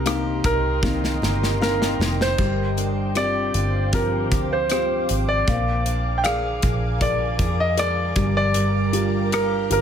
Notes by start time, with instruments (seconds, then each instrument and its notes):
Already playing: fingered electric bass C2, felt piano C3, steel-string acoustic guitar C3 A#3 D#4, grand piano A#4, ambient pad A#4 D#5 G5 C6
0.05 felt piano A#3 C4 D#4, steel-string acoustic guitar G4, cross-stick, closed hi-hat
0.44 fingered electric bass C2, steel-string acoustic guitar D#4, grand piano A#4, kick, closed hi-hat
0.82 steel-string acoustic guitar D#3, felt piano A#3 C4 D#4, kick, snare
1.04 snare
1.22 fingered electric bass G1, steel-string acoustic guitar G4, snare
1.43 snare
1.60 felt piano A#3 C4 D#4, steel-string acoustic guitar A#3, grand piano A#4, snare
1.82 snare
1.99 fingered electric bass F1, steel-string acoustic guitar D#4, snare
2.21 grand piano C5, snare
2.38 fingered electric bass G1, steel-string acoustic guitar G2, felt piano G3, ambient pad C5 F5 D6, kick, splash
2.77 steel-string acoustic guitar D4, closed hi-hat
3.15 felt piano C4 F4 G4, steel-string acoustic guitar G4, grand piano D5, cross-stick, closed hi-hat
3.54 fingered electric bass G1, steel-string acoustic guitar D4, closed hi-hat
3.92 steel-string acoustic guitar F3, felt piano C4 F4 G4, grand piano A#4, kick, closed hi-hat
4.31 fingered electric bass D2, steel-string acoustic guitar G4, kick, closed hi-hat
4.53 grand piano C5
4.70 felt piano C4 F4 G4, steel-string acoustic guitar C4, grand piano C5, cross-stick, closed hi-hat
5.09 fingered electric bass G#1, steel-string acoustic guitar D4, closed hi-hat
5.29 grand piano D5
5.48 fingered electric bass A#1, steel-string acoustic guitar A#2, felt piano A#3, ambient pad A#4 G#5, kick, closed hi-hat
5.86 steel-string acoustic guitar D4, closed hi-hat
6.18 grand piano G5
6.24 felt piano G#4 A#4 D5, steel-string acoustic guitar G#4, grand piano F5, cross-stick, closed hi-hat
6.62 fingered electric bass A#1, steel-string acoustic guitar D4, kick, closed hi-hat
7.01 steel-string acoustic guitar F3, felt piano G#4 A#4 D5, grand piano D5, kick, closed hi-hat
7.39 fingered electric bass F2, steel-string acoustic guitar G#4, kick, closed hi-hat
7.60 grand piano D#5
7.77 steel-string acoustic guitar G#3, felt piano G#4 A#4 D5, grand piano D5, cross-stick, closed hi-hat
8.16 fingered electric bass G1, steel-string acoustic guitar G2, felt piano G3, ambient pad G5, kick, closed hi-hat
8.37 grand piano D5
8.54 steel-string acoustic guitar G2, closed hi-hat
8.93 steel-string acoustic guitar D4, felt piano F4 G4 A#4, closed hi-hat
9.32 steel-string acoustic guitar G4, grand piano A#4, cross-stick, closed hi-hat
9.70 fingered electric bass G1, steel-string acoustic guitar D4, felt piano F4 G4 A#4, grand piano A#4, closed hi-hat